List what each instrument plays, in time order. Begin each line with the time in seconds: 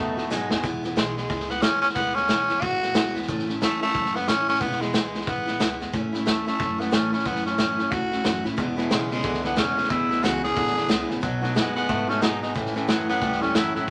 Already playing: upright bass E2, clean electric guitar B2, steel-string acoustic guitar F#3 B3, tenor saxophone D#4
0.00 clean electric guitar A3, steel-string acoustic guitar D#4 F#4
0.17 clean electric guitar B2 A3, steel-string acoustic guitar B3 D#4 F#4, snare
0.30 upright bass G#2, steel-string acoustic guitar B2 F#3 B3 D#4 F#4, clean electric guitar B2 G#3, snare, hi-hat pedal
0.50 upright bass D#2, clean electric guitar B2 G#3, steel-string acoustic guitar B3 D#4 F#4, snare
0.63 upright bass E1, steel-string acoustic guitar E2 B2 E3 G#3 B3 E4, kick, snare
0.83 steel-string acoustic guitar E3 G#3 B3 E4, snare
0.95 upright bass B1, steel-string acoustic guitar E2 B2 E3 G#3 B3 E4, tenor saxophone G#3, snare, hi-hat pedal
1.15 steel-string acoustic guitar E3 G#3 B3 E4, tenor saxophone G#3, snare
1.28 upright bass C#2, steel-string acoustic guitar E3 G#3 B3 E4, kick, snare
1.40 snare
1.48 steel-string acoustic guitar E3 G#3 B3 E4, tenor saxophone B3, snare
1.62 steel-string acoustic guitar E2 B2 E3 G#3 B3 E4, upright bass E2, tenor saxophone C#4, snare, hi-hat pedal
1.82 steel-string acoustic guitar E3 G#3 B3 E4, tenor saxophone C#4, snare
1.89 snare
1.95 upright bass D2, steel-string acoustic guitar E2 B2 E3 G#3 B3 E4, tenor saxophone B3, kick, snare
2.15 steel-string acoustic guitar E3 G#3 B3 E4, tenor saxophone C#4, snare
2.28 upright bass C#2, steel-string acoustic guitar E2 B2 E3 G#3 B3 E4, snare, hi-hat pedal
2.48 steel-string acoustic guitar E3 G#3 B3 E4, snare
2.61 upright bass A1, steel-string acoustic guitar E3 G#3 B3 E4, tenor saxophone F#4, kick, snare
2.81 steel-string acoustic guitar E3 G#3 B3 E4, snare
2.94 upright bass C#2, steel-string acoustic guitar E2 B2 E3 G#3 B3 E4, snare, hi-hat pedal
3.14 upright bass E2, steel-string acoustic guitar E3 G#3 B3 E4, snare
3.22 snare
3.27 upright bass A1, steel-string acoustic guitar A2 E3 A3 C#4 E4, kick, snare
3.39 snare
3.47 steel-string acoustic guitar A3 C#4 E4, snare
3.61 upright bass E2, steel-string acoustic guitar A2 E3 A3 C#4 E4, tenor saxophone A3, snare, hi-hat pedal
3.81 tenor saxophone A3, steel-string acoustic guitar A3 C#4 E4, snare
3.89 snare
3.93 upright bass F#2, steel-string acoustic guitar E3 A3 C#4 E4, kick, snare
4.05 snare
4.14 steel-string acoustic guitar A3 C#4 E4, tenor saxophone B3, snare
4.27 steel-string acoustic guitar A2 E3 A3 C#4 E4, upright bass A2, tenor saxophone C#4, snare, hi-hat pedal
4.47 steel-string acoustic guitar A3 C#4 E4, tenor saxophone C#4, snare
4.55 snare
4.60 upright bass E1, steel-string acoustic guitar E2 B2 E3 G#3 B3 E4, tenor saxophone B3, kick, snare
4.71 snare
4.79 steel-string acoustic guitar E3 G#3 B3 E4, tenor saxophone G#3, snare
4.93 upright bass C#2, steel-string acoustic guitar E2 B2 E3 G#3 B3 E4, snare, hi-hat pedal
5.13 steel-string acoustic guitar E3 G#3 B3 E4, snare
5.21 snare
5.26 upright bass A1, steel-string acoustic guitar E3 G#3 B3 E4, tenor saxophone B3, kick, snare
5.46 steel-string acoustic guitar E3 G#3 B3 E4, snare
5.59 upright bass C#2, steel-string acoustic guitar E2 B2 E3 G#3 B3 E4, snare, hi-hat pedal
5.80 upright bass E2, steel-string acoustic guitar E3 G#3 B3 E4, snare
5.93 upright bass A1, steel-string acoustic guitar A2 E3 A3 C#4 E4, kick, snare
6.13 steel-string acoustic guitar A3 C#4 E4, snare
6.26 upright bass E2, steel-string acoustic guitar A2 E3 A3 C#4 E4, tenor saxophone A3, snare, hi-hat pedal
6.45 tenor saxophone A3, steel-string acoustic guitar A3 C#4 E4, snare
6.58 upright bass F#2, steel-string acoustic guitar E3 A3 C#4 E4, kick, snare
6.78 steel-string acoustic guitar A3 C#4 E4, tenor saxophone B3, snare
6.91 steel-string acoustic guitar A2 E3 A3 C#4 E4, upright bass A2, tenor saxophone C#4, snare, hi-hat pedal
7.12 steel-string acoustic guitar A3 C#4 E4, tenor saxophone C#4, snare
7.19 snare
7.24 upright bass F#2, steel-string acoustic guitar A2 E3 A3 C#4 E4, tenor saxophone B3, kick, snare
7.35 snare
7.45 steel-string acoustic guitar A3 C#4 E4, tenor saxophone C#4, snare
7.58 upright bass F#2, steel-string acoustic guitar A2 E3 A3 C#4 E4, snare, hi-hat pedal
7.78 steel-string acoustic guitar A3 C#4 E4, snare
7.91 upright bass D2, steel-string acoustic guitar E3 A3 C#4 E4, tenor saxophone F#4, kick, snare
8.11 steel-string acoustic guitar A3 C#4 E4, snare
8.24 upright bass F#2, steel-string acoustic guitar A2 E3 A3 C#4 E4, snare, hi-hat pedal
8.44 upright bass A2, steel-string acoustic guitar A3 C#4 E4, snare
8.57 upright bass E1, steel-string acoustic guitar E2 B2 E3 G#3 B3 E4, clean electric guitar E2 B2, kick, snare
8.77 clean electric guitar E2 B2, steel-string acoustic guitar E3 G#3 B3 E4, snare
8.90 upright bass B1, steel-string acoustic guitar E2 B2 E3 G#3 B3 E4, clean electric guitar E2 C#3, tenor saxophone G#3, snare, hi-hat pedal
9.10 clean electric guitar E2 C#3, steel-string acoustic guitar E3 G#3 B3 E4, tenor saxophone G#3, snare
9.18 snare
9.23 upright bass C#2, clean electric guitar E2 D3, steel-string acoustic guitar E3 G#3 B3 E4, kick, snare
9.34 snare
9.43 clean electric guitar E2 D3, steel-string acoustic guitar E3 G#3 B3 E4, tenor saxophone B3, snare
9.56 steel-string acoustic guitar E2 B2 E3 G#3 B3 E4, clean electric guitar E2 C#3, upright bass E2, tenor saxophone C#4, snare, hi-hat pedal
9.76 clean electric guitar E2 C#3, steel-string acoustic guitar E3 G#3 B3 E4, snare
9.84 snare
9.89 upright bass D2, steel-string acoustic guitar E2 B2 E3 G#3 B3 E4, clean electric guitar E2 B2, tenor saxophone E4, kick, snare
10.09 clean electric guitar E2 B2, steel-string acoustic guitar E3 G#3 B3 E4, snare
10.23 upright bass C#2, steel-string acoustic guitar E2 B2 E3 G#3 B3 E4, clean electric guitar E2 C#3, tenor saxophone F#4, snare, hi-hat pedal
10.42 clean electric guitar E2 C#3, steel-string acoustic guitar E3 G#3 B3 E4, tenor saxophone G#4, snare
10.55 upright bass A1, clean electric guitar E2 D3, steel-string acoustic guitar E3 G#3 B3 E4, kick, snare
10.67 snare
10.76 clean electric guitar E2 D3, steel-string acoustic guitar E3 G#3 B3 E4, snare
10.88 upright bass C#2, steel-string acoustic guitar E2 B2 E3 G#3 B3 E4, clean electric guitar E2 C#3, snare, hi-hat pedal
11.08 upright bass A1, clean electric guitar E2 C#3, steel-string acoustic guitar E3 G#3 B3 E4, snare
11.21 upright bass B1, steel-string acoustic guitar B2 F#3 B3 D#4 F#4, clean electric guitar B2 F#3, kick, snare
11.41 clean electric guitar B2 F#3, steel-string acoustic guitar B3 D#4 F#4, snare
11.54 upright bass F#2, steel-string acoustic guitar B2 F#3 B3 D#4 F#4, clean electric guitar B2 G#3, tenor saxophone B3, snare, hi-hat pedal
11.75 clean electric guitar B2 G#3, tenor saxophone B3, steel-string acoustic guitar B3 D#4 F#4, snare
11.87 upright bass G#2, clean electric guitar B2 A3, steel-string acoustic guitar F#3 B3 D#4 F#4, kick, snare
12.08 clean electric guitar B2 A3, steel-string acoustic guitar B3 D#4 F#4, tenor saxophone C#4, snare
12.21 upright bass G#1, steel-string acoustic guitar B2 F#3 B3 D#4 F#4, clean electric guitar B2 G#3, tenor saxophone D#4, snare, hi-hat pedal
12.41 clean electric guitar B2 G#3, steel-string acoustic guitar B3 D#4 F#4, tenor saxophone D#4, snare
12.54 upright bass A1, steel-string acoustic guitar A2 E3 A3 C#4 E4, clean electric guitar A2 E3, kick, snare
12.66 snare
12.74 clean electric guitar A2 E3, steel-string acoustic guitar A3 C#4 E4, snare
12.88 upright bass F#2, steel-string acoustic guitar A2 E3 A3 C#4 E4, clean electric guitar A2 F#3, tenor saxophone B3, snare, hi-hat pedal
13.08 clean electric guitar A2 F#3, steel-string acoustic guitar A3 C#4 E4, tenor saxophone B3, snare
13.21 upright bass D2, clean electric guitar A2 G3, steel-string acoustic guitar E3 A3 C#4 E4, kick, snare
13.32 snare
13.41 clean electric guitar A2 G3, steel-string acoustic guitar A3 C#4 E4, tenor saxophone C#4, snare
13.55 upright bass F#2, steel-string acoustic guitar A2 E3 A3 C#4 E4, clean electric guitar A2 F#3, tenor saxophone E4, snare, hi-hat pedal
13.74 clean electric guitar A2 F#3, upright bass A2, steel-string acoustic guitar A3 C#4 E4, tenor saxophone E4, snare